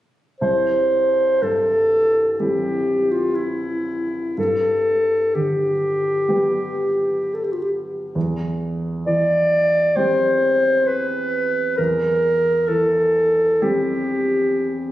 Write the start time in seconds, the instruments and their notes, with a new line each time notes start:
0.41 grand piano C2, clarinet C5
1.42 grand piano G2, clarinet A4
2.32 clarinet A4
2.39 grand piano G3 C4 E4, clarinet G4
3.11 clarinet F4
3.35 clarinet E4
4.37 grand piano G2, clarinet A4
5.35 grand piano D3, clarinet G4
6.29 grand piano G3 B3 G4
7.34 clarinet A4
7.44 clarinet G4
7.52 clarinet F4
7.62 clarinet G4
8.15 grand piano E2
9.06 grand piano E3, clarinet D5
9.96 grand piano G3 C4 G4, clarinet C5
10.87 clarinet B4
11.77 grand piano E2, clarinet A#4
12.68 grand piano E3, clarinet A4
13.62 grand piano G3 C4 G4, clarinet G4